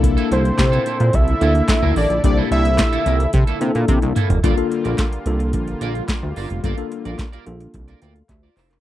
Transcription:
<<
  \new Staff \with { instrumentName = "Analog synth lead" } { \time 4/4 \key c \mixolydian \tempo 4 = 109 r8 c''4. e''4. d''8 | d''8 e''4. r2 | r1 | r1 | }
  \new Staff \with { instrumentName = "Clean electric guitar" } { \time 4/4 \key c \mixolydian r16 <bes e' a'>16 <bes e' a'>16 r8 <bes e' a'>16 <bes e' a'>16 r8. <bes e' a'>8 r16 <bes e' bes'>16 <bes e' bes'>16 r16 | r16 <bes e' a'>16 <bes e' a'>16 r8 <bes e' a'>16 <bes e' bes'>16 r8 <bes e' a'>8 r8. <bes e' a'>8 | <f' bes' d''>8 r16 <f' bes' d''>16 r4. <f' bes' d''>8 r8 <f' bes' d''>8 | <f' bes' d''>8 r16 <f' bes' d''>16 r16 <f' bes' d''>8 r8 <f' bes' d''>16 <f' bes' d''>16 r8 <f' bes' d''>16 <f' bes' e''>16 r16 | }
  \new Staff \with { instrumentName = "Tine electric piano" } { \time 4/4 \key c \mixolydian << { r1 | r1 | r1 | r2 r8 <bes' g''>16 <a' f''>16 <g' e''>16 <f' d''>16 <e' c''>16 <d' bes'>16 | } \\ { <bes d' e' a'>4 r4. <bes d' e' a'>4 r8 | <bes d' e' g'>4~ <bes d' e' g'>16 r4 r16 <bes d' e' a'>4 r8 | <bes d' f' a'>16 <bes d' f' a'>8. r8 <bes d' f' a'>4~ <bes d' f' a'>16 r4 r16 | <bes d' f' a'>16 <bes d' f' a'>8. r8 <bes d' f' a'>4~ <bes d' f' a'>16 r4 r16 | } >> }
  \new Staff \with { instrumentName = "Analog synth pad" } { \clef bass \time 4/4 \key c \mixolydian <bes, d e' a'>1~ | <bes, d e' a'>1 | <d g bes f'>1~ | <d g bes f'>1 | }
  \new Staff \with { instrumentName = "Analog synth bass" } { \clef bass \time 4/4 \key c \mixolydian c,8 c,8 c8 r16 bes,16 c,8 d,8 r16 d,16 a,,16 bes,,16 | c,8 c,8. r16 c,8 c16 r16 c16 bes,16 c16 c,16 r16 f,,16 | g,,16 r8 bes,,16 r8 c,8 bes,,8 bes,,8 r16 d,16 g,,16 f,,16 | g,,16 r8 bes,,16 r8 bes,,8 c,8 d,8 d,8 f,,8 | }
  \new DrumStaff \with { instrumentName = "Drums" } \drummode { \time 4/4 <hh bd>16 hh16 hh16 hh16 <hc hh bd sn>16 hh16 hh16 hh16 <hh bd>16 hh16 hh16 hh16 <hc hh bd sn>8 hho16 hh16 | <hh bd>8 hh16 hh16 <hc hh bd sn>16 hh16 hh16 hh16 <hh bd>16 hh16 hh16 hh16 <hh bd tommh>16 hh16 <hh toml>16 <hh tomfh>16 | <hh bd>16 hh16 hh16 hh16 <hc hh bd sn>16 hh16 hh16 hh16 <hh bd>16 hh16 hh16 hh16 <hc hh bd sn>8 hho16 hh16 | <hh bd>16 hh16 hh16 hh16 <hc hh bd sn>16 hh16 hh16 hh16 <hh bd>16 hh16 hh16 hh16 <hc hh bd>8 <hc hho>16 hc16 | }
>>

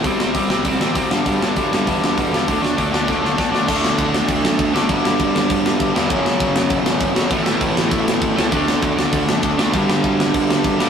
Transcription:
<<
  \new Staff \with { instrumentName = "Distorted electric guitar" } { \clef bass \time 4/4 \key d \major \tempo 4 = 198 <c g c'>8 <c g c'>8 <c g c'>8 <c g c'>8 <c g c'>8 <c g c'>8 <c g c'>8 <g, d g>8 | <g, d g>8 <g, d g>8 <g, d g>8 <g, d g>8 <g, d g>8 <g, d g>8 <g, d g>8 <g, d g>8 | <d a d'>8 <d a d'>8 <d a d'>8 <d a d'>8 <d a d'>8 <d a d'>8 <d a d'>8 <d a d'>8 | <d a d'>2.~ <d a d'>8 <d a d'>8 |
<g, d g>2.~ <g, d g>8 <g, d g>8 | <fis, cis fis>2.~ <fis, cis fis>8 <fis, cis fis>8 | <a, e a>2.~ <a, e a>8 <a, e a>8 | <d a d'>2.~ <d a d'>8 <d a d'>8 |
<g, d g>2.~ <g, d g>8 <g, d g>8 | }
  \new Staff \with { instrumentName = "Picked electric bass" } { \clef bass \time 4/4 \key d \major c,8 c,8 c,4 c,8 a,,8 c,8 g,,8 | g,,8 g,,8 g,,8 g,,8 e,4 e,4 | d,8 d,8 d,4 d,8 b,,8 d,8 d,8 | d,4 d,4 d,8 fis,8 d,8 fis,,8 |
g,,8 g,,8 g,,8 g,,8 g,,4 g,,8 e,,8 | fis,,4 fis,,4 fis,,8 a,,8 fis,,8 fis,,8 | a,,8 a,,8 a,,8 a,,8 a,,4 a,,8 cis,8 | d,4 d,4 d,8 fis,8 d,8 fis,,8 |
g,,8 g,,8 g,,8 g,,8 g,,4 g,,8 g,,8 | }
  \new DrumStaff \with { instrumentName = "Drums" } \drummode { \time 4/4 <hho bd>8 sn8 <hho bd>8 sn8 <hho bd>8 sn8 <hho bd>8 sn8 | <hho bd>8 sn8 <hho bd>8 sn8 <hho bd>8 sn8 <hho bd>8 sn8 | <hho bd>8 sn8 <hho bd>8 sn8 <bd sn>8 sn8 <bd sn>8 sn8 | <cymc bd>8 sn8 <cymc bd>8 sn8 <cymc bd>8 sn8 <cymc bd>8 sn8 |
<cymc bd>8 sn8 <cymc bd>8 sn8 <cymc bd>8 sn8 <cymc bd>8 sn8 | <cymc bd>8 sn8 <cymc bd>8 sn8 <cymc bd>8 sn8 <cymc bd>8 sn8 | <cymc bd>8 sn8 <cymc bd>8 sn8 <cymc bd>8 sn8 <cymc bd>8 sn8 | <cymc bd>8 sn8 <cymc bd>8 sn8 <cymc bd>8 sn8 <cymc bd>8 sn8 |
<cymc bd>8 sn8 <cymc bd>8 sn8 <cymc bd>8 sn8 <cymc bd>8 sn8 | }
>>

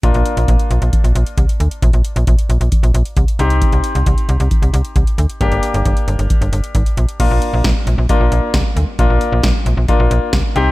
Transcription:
<<
  \new Staff \with { instrumentName = "Grand piano" } { \time 4/4 \key bes \mixolydian \tempo 4 = 134 <bes d' f'>1~ | <bes d' f'>2.~ <bes d' f'>8 <c' ees' g'>8~ | <c' ees' g'>1 | <bes d' g'>1 |
<bes d' f'>4 r4 <bes d' f'>4 r4 | <bes d' f'>4 r4 <bes d' f'>4 r8 <c' ees' g'>8 | }
  \new Staff \with { instrumentName = "FM bass" } { \clef bass \time 4/4 \key bes \mixolydian bes,,16 bes,,16 r16 bes,,16 bes,,16 r16 bes,,16 bes,,16 r16 bes,,16 bes,,16 r16 c,16 r16 d,16 r16 | bes,,16 bes,,16 r16 bes,,16 bes,,16 r16 bes,,16 bes,,16 r16 bes,,16 bes,,16 r16 c,16 r16 c,8~ | c,16 c,16 r16 c,16 c,16 r16 c,16 c,16 r16 c,16 c,16 r16 c,16 r16 d,16 r16 | g,,16 g,,16 r16 g,,16 g,,16 r16 g,,16 g,,16 r16 g,,16 g,,16 r16 aes,,16 r16 bes,,16 r16 |
bes,,16 bes,,16 r16 bes,,16 bes,,16 r16 bes,,16 bes,,16 r16 bes,,16 bes,,16 r16 c,16 r16 d,16 r16 | bes,,16 bes,,16 r16 bes,,16 bes,,16 r16 bes,,16 bes,,16 r16 bes,,16 bes,,16 r16 c,16 r16 c,8 | }
  \new DrumStaff \with { instrumentName = "Drums" } \drummode { \time 4/4 <hh bd>16 hh16 hh16 hh16 <hh bd>16 hh16 hh16 hh16 <hh bd>16 hh16 hh16 hh16 <hh bd>16 hh16 hh16 hh16 | <hh bd>16 hh16 hh16 hh16 <hh bd>16 hh16 hh16 hh16 <hh bd>16 hh16 hh16 hh16 <hh bd>16 hh16 hh16 hh16 | <hh bd>16 hh16 hh16 hh16 <hh bd>16 hh16 hh16 hh16 <hh bd>16 hh16 hh16 hh16 <hh bd>16 hh16 hh16 hh16 | <hh bd>16 hh16 hh16 hh16 <hh bd>16 hh16 hh16 hh16 <hh bd>16 hh16 hh16 hh16 <hh bd>16 hh16 hh16 hh16 |
<cymc hh bd>8 hh8 <hh bd sn>8 hh8 <hh bd>8 hh8 <hh bd sn>8 hh8 | <hh bd>8 hh8 <hh bd sn>8 hh8 <hh bd>8 hh8 <hh bd sn>8 hh8 | }
>>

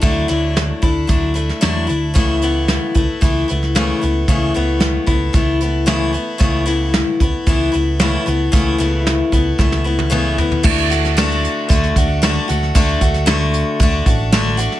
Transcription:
<<
  \new Staff \with { instrumentName = "Steel-string acoustic guitar" } { \time 4/4 \key d \major \tempo 4 = 113 <d fis a d' e'>8 <d fis a d' e'>4 <a d' e'>8 <fis a d' e'>8 <a d' e'>8 <d fis a d' e'>8 <a d' e'>8 | <cis e a b e'>8 <cis e a b e'>4 <a b e'>8 <e a b e'>8 <a b e'>8 <cis e a b e'>8 <a b e'>8 | <cis e a b e'>8 <cis e a b e'>4 <a b e'>8 <e a b e'>8 <a b e'>8 <cis e a b e'>8 <a b e'>8 | <cis e a b e'>8 <cis e a b e'>4 <a b e'>8 <e a b e'>8 <a b e'>8 <cis e a b e'>8 <a b e'>8 |
<cis e a b e'>8 <cis e a b e'>4 <a b e'>8 <e a b e'>8 <a b e'>8 <cis e a b e'>8 <a b e'>8 | <d a d' fis'>8 <a d' fis'>8 <d a d' fis'>4 <d a d' fis'>8 <a d' fis'>8 <d a d' fis'>8 <a d' fis'>8 | <d a d' fis'>8 <a d' fis'>8 <d a d' fis'>4 <d a d' fis'>8 <a d' fis'>8 <d a d' fis'>8 <a d' fis'>8 | }
  \new Staff \with { instrumentName = "Picked electric bass" } { \clef bass \time 4/4 \key d \major d,8 d,4 d,8 d,4 e,8 d,8 | cis,4. cis,16 r16 cis,8 cis,4 cis,8 | cis,8 cis,4 cis,8 cis,2 | cis,4. cis,16 r16 cis,8 cis,4 cis,8 |
cis,8 cis,4 cis,8 cis,2 | d,2 d,8 d,4 d,8 | d,8 d,4. d,8 a,,4. | }
  \new DrumStaff \with { instrumentName = "Drums" } \drummode { \time 4/4 <hh bd>8 hh8 <hh sn>8 <hh bd>8 <hh bd>8 hh16 sn16 <hh sn>8 hh8 | <hh bd>8 hh8 <hh sn>8 <hh bd>8 <hh bd>8 hh16 sn16 <hh sn>8 hh8 | <hh bd>8 hh8 <hh sn>8 <hh bd>8 <hh bd>8 hh8 <hh sn>8 hh8 | <hh bd>8 hh8 <hh sn>8 <hh bd>8 <hh bd>8 hh8 <hh sn>8 hh8 |
<hh bd>8 hh8 <hh sn>8 <hh bd>8 <bd sn>16 sn8 tommh16 toml8 tomfh16 tomfh16 | <cymc bd>16 hh16 hh16 <hh sn>16 <hh sn>16 hh16 hh8 <hh bd>16 hh16 <hh bd>8 <hh sn>8 hh16 sn16 | <hh bd>16 hh16 <hh bd>16 <hh sn>16 <hh sn>8 hh8 <hh bd>8 <hh bd>8 <hh sn>8 hh16 sn16 | }
>>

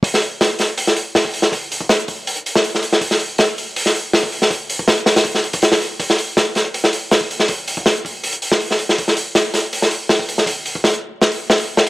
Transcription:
\new DrumStaff \with { instrumentName = "Drums" } \drummode { \time 4/4 \tempo 4 = 161 <hho bd>16 sn16 hho8 <hho sn>8 <hho sn>8 hho16 sn16 hho8 <hho sn>16 bd16 hho16 sn16 | <hho bd>8 hho16 bd16 <hho sn>16 hh16 <hho bd>8 hho16 hh16 hho16 sn16 hho16 sn16 hho16 sn16 | <hho bd>16 sn16 hho8 <hho sn>8 hho8 hho16 sn16 hho8 <hho sn>16 bd16 hho16 sn16 | <hho bd>8 hho16 bd16 <hho sn>16 hh16 <hho sn>16 <hho sn>16 <hho bd>16 sn16 hho16 <hho bd>16 <hho sn>16 <hho sn>16 hho8 |
<hho bd>16 sn16 hho8 <hho sn>8 <hho sn>8 hho16 sn16 hho8 <hho sn>16 bd16 hho16 sn16 | <hho bd>8 hho16 bd16 <hho sn>16 hh16 <hho bd>8 hho16 hh16 hho16 sn16 hho16 sn16 hho16 sn16 | <hho bd>16 sn16 hho8 <hho sn>8 <hho sn>8 hho16 sn16 hho8 <hho sn>16 bd16 hho16 sn16 | <hho bd>8 hho16 bd16 <hho sn>16 hh8. sn16 hho8 sn16 hho8 sn8 | }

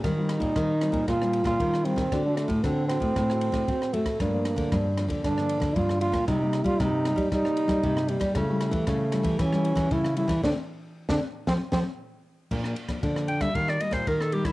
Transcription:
<<
  \new Staff \with { instrumentName = "Clarinet" } { \time 4/4 \key g \minor \tempo 4 = 115 r1 | r1 | r1 | r1 |
r1 | r1 | \key bes \major r4. g''16 e''16 f''16 d''16 ees''16 c''16 bes'16 a'16 g'16 e'16 | }
  \new Staff \with { instrumentName = "Trombone" } { \time 4/4 \key g \minor ees'2 f'8. f'8. c'8~ | c'16 d'16 a8 c'8 c'2 a8 | bes4. r8 d'4 f'8 f'8 | ees'8. f'16 ees'4 ees'4. g8 |
a2 cis'4 e'8 e'8 | d'16 r4 d'16 r8 c'16 r16 c'16 r4 r16 | \key bes \major r1 | }
  \new Staff \with { instrumentName = "Nylon-string guitar" } { \time 4/4 \key g \minor << { <g c' f'>16 <g c' f'>8. <g c' f'>16 r16 <g c' f'>8. <g c' f'>8. <g c' f'>8 <g c' f'>16 r16 | <a c' fis'>16 <a c' fis'>8. <a c' fis'>16 r16 <a c' fis'>8 r16 <a c' fis'>8. <a c' fis'>8 <a c' fis'>8 | <f bes d'>16 <f bes d'>8. <f bes d'>16 r16 <f bes d'>8 r16 <f bes d'>8. <f bes d'>16 r16 <f bes d'>16 r16 | <g bes ees'>16 <g bes ees'>8. <g bes ees'>16 r16 <g bes ees'>8 r16 <g bes ees'>8. <g bes ees'>16 r16 <g bes ees'>8 |
<g a e'>16 <g a e'>8. <g a e'>16 r16 <g a e'>8. <g a e'>8. <g a e'>16 r16 <g a e'>16 r16 | <a c' d'>16 r4 <a c' d'>16 r8 <f a c'>16 r16 <f a c'>16 r4 r16 | \key bes \major <f bes d'>8 r16 <f bes d'>16 <f bes d'>8 r16 <g bes f'>8. <g bes f'>8. r16 <g bes f'>16 r16 | } \\ { ees4 bes,4 ees4 bes,4 | d4 a,4 d4 a,4 | g,4 d4 g,4 d4 | c4 g,4 c4 g,4 |
cis4 cis4 cis4 cis4 | r1 | bes,4 f,4 ees4 bes,4 | } >> }
  \new Staff \with { instrumentName = "Nylon-string guitar" } { \clef bass \time 4/4 \key g \minor ees8. bes,16 ees8. bes,16 bes,8. bes,16 ees8. ees16 | d8. a,16 d8. a,16 a,8. a,16 c'8 a8 | g,8. d16 g,8. d16 d8. d16 g,8. bes,16 | c8. g16 c8. g16 g8. g16 c8. g16 |
cis8. e16 cis8. e16 e8. e16 cis8. e16 | d16 r4 d16 r8 f16 r16 f16 r4 r16 | \key bes \major bes,8 r8 d4 ees8 r16 bes,16 ees4 | }
  \new DrumStaff \with { instrumentName = "Drums" } \drummode { \time 4/4 <bd cymr ss>8 <cymr ss>16 <bd cymr>16 <bd cymr ss>8 <cymr ss>16 <bd cymr>16 <bd cymr ss>16 ss16 cymr16 <bd cymr ss>16 <bd cymr>16 ss16 cymr16 <bd cymr ss>16 | <bd cymr ss>8 <cymr ss>16 <bd cymr>16 <bd cymr ss>8 <cymr ss>16 <bd cymr>16 <bd cymr ss>16 ss16 cymr16 <bd cymr ss>16 <bd cymr>16 ss16 cymr16 <bd cymr ss>16 | <bd cymr ss>8 <cymr ss>16 <bd cymr>16 <bd cymr ss>8 <cymr ss>16 <bd cymr>16 <bd cymr ss>16 ss16 cymr16 <bd cymr ss>16 <bd cymr>16 ss16 cymr16 <bd cymr ss>16 | <bd cymr ss>8 <cymr ss>16 <bd cymr>16 <bd cymr ss>8 <cymr ss>16 <bd cymr>16 <bd cymr ss>16 ss16 cymr16 <bd cymr ss>16 <bd cymr>16 ss16 cymr16 <bd cymr ss>16 |
<bd cymr ss>8 <cymr ss>16 <bd cymr>16 <bd cymr ss>8 <cymr ss>16 <bd cymr>16 <bd cymr ss>16 ss16 cymr16 <bd cymr ss>16 <bd cymr>16 ss16 cymr16 <bd cymr ss>16 | <bd sn>4 r16 <bd sn>8. <bd sn>8 <bd sn>8 r4 | <cymc bd>16 ss16 cymr16 <bd cymr ss>16 <bd cymr>16 ss16 cymr16 <bd cymr ss>16 <bd cymr>16 ss16 cymr16 <bd cymr ss>16 <bd cymr>16 ss16 cymr16 <bd cymr ss>16 | }
>>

